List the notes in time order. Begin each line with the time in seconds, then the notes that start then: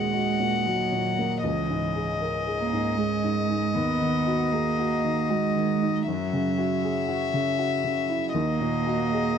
Already playing: D#2 A#2 G#3 C#4 F#4 G#4 D#5 F#5
0.14 F#4
0.40 A#2
0.66 F#3 F#4
0.92 A#2
1.18 A#3
1.42 C#2 E3 G#4 D#5
1.70 G#2
1.96 G#4
2.21 A#4
2.47 G#4
2.59 A#3
2.73 G#2
2.97 G#3 G#4
3.24 G#2
3.50 D#4
3.74 D#2 B3 D#4 F#4 D#5
4.01 D#3
4.27 F#4
4.52 A#3 G#4
4.79 F#4
5.04 D#3
5.30 G#3 F#4
5.56 D#3
5.82 D#4
6.07 F#2 F#3 E4 C#5 E5
6.33 C#3
6.58 F#4
6.84 G#4
7.08 F#4
7.34 C#3
7.59 F#4
7.84 C#3
8.09 E4
8.34 D#2 A#3 F#4 D#5
8.60 A#2
8.87 F#4
9.13 G#4